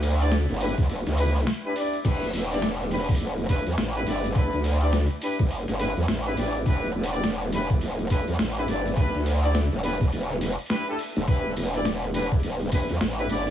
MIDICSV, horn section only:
0, 0, Header, 1, 2, 480
1, 0, Start_track
1, 0, Key_signature, 1, "minor"
1, 0, Tempo, 576923
1, 1703, Time_signature, 4, 2, 24, 8
1, 11234, End_track
2, 0, Start_track
2, 0, Title_t, "Horn section"
2, 0, Program_c, 0, 61
2, 168, Note_on_c, 0, 62, 86
2, 168, Note_on_c, 0, 64, 81
2, 168, Note_on_c, 0, 67, 80
2, 168, Note_on_c, 0, 74, 93
2, 294, Note_off_c, 0, 62, 0
2, 294, Note_off_c, 0, 64, 0
2, 294, Note_off_c, 0, 67, 0
2, 294, Note_off_c, 0, 74, 0
2, 503, Note_on_c, 0, 71, 100
2, 504, Note_on_c, 0, 67, 81
2, 505, Note_on_c, 0, 62, 89
2, 505, Note_on_c, 0, 64, 80
2, 614, Note_off_c, 0, 62, 0
2, 614, Note_off_c, 0, 64, 0
2, 614, Note_off_c, 0, 67, 0
2, 614, Note_off_c, 0, 71, 0
2, 984, Note_on_c, 0, 64, 79
2, 984, Note_on_c, 0, 71, 100
2, 985, Note_on_c, 0, 62, 86
2, 985, Note_on_c, 0, 67, 78
2, 1094, Note_off_c, 0, 62, 0
2, 1094, Note_off_c, 0, 64, 0
2, 1094, Note_off_c, 0, 67, 0
2, 1094, Note_off_c, 0, 71, 0
2, 1369, Note_on_c, 0, 64, 82
2, 1369, Note_on_c, 0, 71, 97
2, 1370, Note_on_c, 0, 62, 89
2, 1370, Note_on_c, 0, 67, 80
2, 1440, Note_off_c, 0, 64, 0
2, 1441, Note_off_c, 0, 62, 0
2, 1441, Note_off_c, 0, 67, 0
2, 1441, Note_off_c, 0, 71, 0
2, 1462, Note_on_c, 0, 62, 84
2, 1462, Note_on_c, 0, 67, 78
2, 1462, Note_on_c, 0, 74, 92
2, 1463, Note_on_c, 0, 64, 77
2, 1628, Note_off_c, 0, 62, 0
2, 1628, Note_off_c, 0, 64, 0
2, 1628, Note_off_c, 0, 67, 0
2, 1628, Note_off_c, 0, 74, 0
2, 1702, Note_on_c, 0, 62, 94
2, 1703, Note_on_c, 0, 64, 86
2, 1703, Note_on_c, 0, 67, 89
2, 1703, Note_on_c, 0, 71, 105
2, 1868, Note_off_c, 0, 62, 0
2, 1869, Note_off_c, 0, 64, 0
2, 1869, Note_off_c, 0, 67, 0
2, 1869, Note_off_c, 0, 71, 0
2, 2090, Note_on_c, 0, 62, 88
2, 2090, Note_on_c, 0, 67, 79
2, 2091, Note_on_c, 0, 64, 80
2, 2091, Note_on_c, 0, 74, 96
2, 2215, Note_off_c, 0, 62, 0
2, 2215, Note_off_c, 0, 67, 0
2, 2216, Note_off_c, 0, 64, 0
2, 2216, Note_off_c, 0, 74, 0
2, 2422, Note_on_c, 0, 62, 90
2, 2422, Note_on_c, 0, 64, 84
2, 2422, Note_on_c, 0, 71, 97
2, 2423, Note_on_c, 0, 67, 83
2, 2533, Note_off_c, 0, 62, 0
2, 2533, Note_off_c, 0, 64, 0
2, 2533, Note_off_c, 0, 67, 0
2, 2533, Note_off_c, 0, 71, 0
2, 2905, Note_on_c, 0, 64, 82
2, 2905, Note_on_c, 0, 67, 80
2, 2906, Note_on_c, 0, 62, 87
2, 2906, Note_on_c, 0, 71, 99
2, 3014, Note_off_c, 0, 64, 0
2, 3014, Note_off_c, 0, 67, 0
2, 3015, Note_off_c, 0, 62, 0
2, 3015, Note_off_c, 0, 71, 0
2, 3290, Note_on_c, 0, 62, 90
2, 3290, Note_on_c, 0, 64, 81
2, 3290, Note_on_c, 0, 71, 97
2, 3291, Note_on_c, 0, 67, 79
2, 3361, Note_off_c, 0, 62, 0
2, 3361, Note_off_c, 0, 64, 0
2, 3361, Note_off_c, 0, 71, 0
2, 3362, Note_off_c, 0, 67, 0
2, 3383, Note_on_c, 0, 62, 86
2, 3384, Note_on_c, 0, 64, 77
2, 3384, Note_on_c, 0, 67, 80
2, 3384, Note_on_c, 0, 74, 94
2, 3549, Note_off_c, 0, 62, 0
2, 3549, Note_off_c, 0, 64, 0
2, 3549, Note_off_c, 0, 67, 0
2, 3549, Note_off_c, 0, 74, 0
2, 3623, Note_on_c, 0, 64, 85
2, 3623, Note_on_c, 0, 71, 109
2, 3624, Note_on_c, 0, 62, 97
2, 3624, Note_on_c, 0, 67, 86
2, 3789, Note_off_c, 0, 62, 0
2, 3789, Note_off_c, 0, 64, 0
2, 3789, Note_off_c, 0, 67, 0
2, 3789, Note_off_c, 0, 71, 0
2, 4009, Note_on_c, 0, 62, 88
2, 4009, Note_on_c, 0, 64, 82
2, 4009, Note_on_c, 0, 67, 80
2, 4009, Note_on_c, 0, 74, 97
2, 4134, Note_off_c, 0, 64, 0
2, 4135, Note_off_c, 0, 62, 0
2, 4135, Note_off_c, 0, 67, 0
2, 4135, Note_off_c, 0, 74, 0
2, 4343, Note_on_c, 0, 64, 81
2, 4344, Note_on_c, 0, 62, 89
2, 4344, Note_on_c, 0, 67, 83
2, 4344, Note_on_c, 0, 71, 97
2, 4453, Note_off_c, 0, 64, 0
2, 4454, Note_off_c, 0, 62, 0
2, 4454, Note_off_c, 0, 67, 0
2, 4454, Note_off_c, 0, 71, 0
2, 4823, Note_on_c, 0, 64, 82
2, 4823, Note_on_c, 0, 71, 98
2, 4824, Note_on_c, 0, 62, 90
2, 4824, Note_on_c, 0, 67, 81
2, 4933, Note_off_c, 0, 64, 0
2, 4933, Note_off_c, 0, 71, 0
2, 4934, Note_off_c, 0, 62, 0
2, 4934, Note_off_c, 0, 67, 0
2, 5207, Note_on_c, 0, 62, 90
2, 5208, Note_on_c, 0, 67, 84
2, 5208, Note_on_c, 0, 71, 96
2, 5209, Note_on_c, 0, 64, 82
2, 5279, Note_off_c, 0, 62, 0
2, 5280, Note_off_c, 0, 64, 0
2, 5280, Note_off_c, 0, 67, 0
2, 5280, Note_off_c, 0, 71, 0
2, 5302, Note_on_c, 0, 62, 85
2, 5302, Note_on_c, 0, 67, 81
2, 5302, Note_on_c, 0, 74, 93
2, 5303, Note_on_c, 0, 64, 78
2, 5468, Note_off_c, 0, 62, 0
2, 5468, Note_off_c, 0, 64, 0
2, 5468, Note_off_c, 0, 67, 0
2, 5468, Note_off_c, 0, 74, 0
2, 5542, Note_on_c, 0, 64, 89
2, 5542, Note_on_c, 0, 71, 108
2, 5543, Note_on_c, 0, 62, 95
2, 5543, Note_on_c, 0, 67, 89
2, 5708, Note_off_c, 0, 64, 0
2, 5708, Note_off_c, 0, 67, 0
2, 5708, Note_off_c, 0, 71, 0
2, 5709, Note_off_c, 0, 62, 0
2, 5928, Note_on_c, 0, 62, 87
2, 5928, Note_on_c, 0, 74, 99
2, 5929, Note_on_c, 0, 64, 79
2, 5929, Note_on_c, 0, 67, 83
2, 6054, Note_off_c, 0, 62, 0
2, 6054, Note_off_c, 0, 64, 0
2, 6054, Note_off_c, 0, 67, 0
2, 6054, Note_off_c, 0, 74, 0
2, 6261, Note_on_c, 0, 62, 87
2, 6262, Note_on_c, 0, 64, 82
2, 6262, Note_on_c, 0, 67, 83
2, 6263, Note_on_c, 0, 71, 100
2, 6373, Note_off_c, 0, 62, 0
2, 6373, Note_off_c, 0, 64, 0
2, 6373, Note_off_c, 0, 67, 0
2, 6373, Note_off_c, 0, 71, 0
2, 6742, Note_on_c, 0, 62, 92
2, 6742, Note_on_c, 0, 64, 82
2, 6742, Note_on_c, 0, 67, 83
2, 6742, Note_on_c, 0, 71, 98
2, 6853, Note_off_c, 0, 62, 0
2, 6853, Note_off_c, 0, 64, 0
2, 6853, Note_off_c, 0, 67, 0
2, 6853, Note_off_c, 0, 71, 0
2, 7126, Note_on_c, 0, 64, 82
2, 7127, Note_on_c, 0, 62, 91
2, 7127, Note_on_c, 0, 67, 82
2, 7127, Note_on_c, 0, 71, 97
2, 7199, Note_off_c, 0, 62, 0
2, 7199, Note_off_c, 0, 64, 0
2, 7199, Note_off_c, 0, 67, 0
2, 7199, Note_off_c, 0, 71, 0
2, 7220, Note_on_c, 0, 62, 87
2, 7220, Note_on_c, 0, 64, 79
2, 7221, Note_on_c, 0, 67, 78
2, 7221, Note_on_c, 0, 74, 96
2, 7387, Note_off_c, 0, 62, 0
2, 7387, Note_off_c, 0, 64, 0
2, 7388, Note_off_c, 0, 67, 0
2, 7388, Note_off_c, 0, 74, 0
2, 7459, Note_on_c, 0, 71, 107
2, 7460, Note_on_c, 0, 62, 99
2, 7460, Note_on_c, 0, 64, 87
2, 7460, Note_on_c, 0, 67, 90
2, 7627, Note_off_c, 0, 62, 0
2, 7627, Note_off_c, 0, 64, 0
2, 7627, Note_off_c, 0, 67, 0
2, 7627, Note_off_c, 0, 71, 0
2, 7846, Note_on_c, 0, 62, 87
2, 7846, Note_on_c, 0, 64, 81
2, 7846, Note_on_c, 0, 74, 99
2, 7847, Note_on_c, 0, 67, 81
2, 7973, Note_off_c, 0, 62, 0
2, 7973, Note_off_c, 0, 64, 0
2, 7973, Note_off_c, 0, 74, 0
2, 7974, Note_off_c, 0, 67, 0
2, 8180, Note_on_c, 0, 62, 92
2, 8180, Note_on_c, 0, 71, 100
2, 8181, Note_on_c, 0, 64, 81
2, 8181, Note_on_c, 0, 67, 83
2, 8292, Note_off_c, 0, 62, 0
2, 8292, Note_off_c, 0, 64, 0
2, 8292, Note_off_c, 0, 67, 0
2, 8292, Note_off_c, 0, 71, 0
2, 8900, Note_on_c, 0, 62, 88
2, 8900, Note_on_c, 0, 67, 81
2, 8900, Note_on_c, 0, 71, 98
2, 8901, Note_on_c, 0, 64, 80
2, 9012, Note_off_c, 0, 62, 0
2, 9012, Note_off_c, 0, 64, 0
2, 9012, Note_off_c, 0, 67, 0
2, 9012, Note_off_c, 0, 71, 0
2, 9045, Note_on_c, 0, 64, 81
2, 9045, Note_on_c, 0, 67, 81
2, 9046, Note_on_c, 0, 62, 88
2, 9046, Note_on_c, 0, 69, 96
2, 9118, Note_off_c, 0, 67, 0
2, 9119, Note_off_c, 0, 62, 0
2, 9119, Note_off_c, 0, 64, 0
2, 9119, Note_off_c, 0, 69, 0
2, 9379, Note_on_c, 0, 62, 92
2, 9379, Note_on_c, 0, 67, 88
2, 9379, Note_on_c, 0, 71, 105
2, 9380, Note_on_c, 0, 64, 88
2, 9547, Note_off_c, 0, 62, 0
2, 9547, Note_off_c, 0, 64, 0
2, 9547, Note_off_c, 0, 67, 0
2, 9547, Note_off_c, 0, 71, 0
2, 9766, Note_on_c, 0, 62, 88
2, 9766, Note_on_c, 0, 64, 81
2, 9766, Note_on_c, 0, 67, 78
2, 9766, Note_on_c, 0, 74, 96
2, 9893, Note_off_c, 0, 62, 0
2, 9893, Note_off_c, 0, 64, 0
2, 9893, Note_off_c, 0, 67, 0
2, 9893, Note_off_c, 0, 74, 0
2, 10100, Note_on_c, 0, 64, 82
2, 10101, Note_on_c, 0, 62, 88
2, 10101, Note_on_c, 0, 67, 84
2, 10101, Note_on_c, 0, 71, 99
2, 10212, Note_off_c, 0, 62, 0
2, 10212, Note_off_c, 0, 64, 0
2, 10212, Note_off_c, 0, 67, 0
2, 10212, Note_off_c, 0, 71, 0
2, 10583, Note_on_c, 0, 62, 90
2, 10583, Note_on_c, 0, 64, 79
2, 10583, Note_on_c, 0, 71, 96
2, 10584, Note_on_c, 0, 67, 83
2, 10693, Note_off_c, 0, 64, 0
2, 10693, Note_off_c, 0, 71, 0
2, 10694, Note_off_c, 0, 62, 0
2, 10694, Note_off_c, 0, 67, 0
2, 10968, Note_on_c, 0, 67, 80
2, 10968, Note_on_c, 0, 71, 99
2, 10970, Note_on_c, 0, 62, 86
2, 10970, Note_on_c, 0, 64, 79
2, 11040, Note_off_c, 0, 67, 0
2, 11040, Note_off_c, 0, 71, 0
2, 11041, Note_off_c, 0, 62, 0
2, 11041, Note_off_c, 0, 64, 0
2, 11063, Note_on_c, 0, 62, 87
2, 11063, Note_on_c, 0, 64, 79
2, 11063, Note_on_c, 0, 67, 77
2, 11064, Note_on_c, 0, 74, 96
2, 11229, Note_off_c, 0, 62, 0
2, 11229, Note_off_c, 0, 64, 0
2, 11229, Note_off_c, 0, 67, 0
2, 11229, Note_off_c, 0, 74, 0
2, 11234, End_track
0, 0, End_of_file